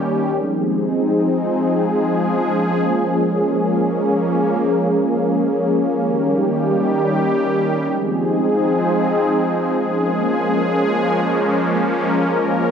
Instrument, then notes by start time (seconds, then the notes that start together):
analog synth pad
Already playing: D#3 G3 A#3 C#4 G4
0.32 F3 G#3 C4 D#4 G#4
2.21 A#3 C#4
5.99 D#3 G3 G4
7.88 F3 G#3 C4 D#4 G#4
9.77 F3 G#3 A#3 C#4 G#4
11.66 A#4